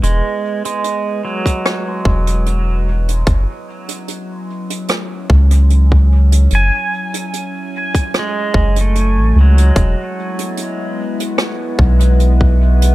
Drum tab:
HH |x--xx--xx--xx--x|x--xx--xx--xx--x|x--xx--xx--xx--x|x--xx--xx--xx--x|
SD |--------r-------|--------r-------|--------r-------|--------r-------|
BD |-------o--o-----|o---------o--o--|-------o--o-----|o---------o--o--|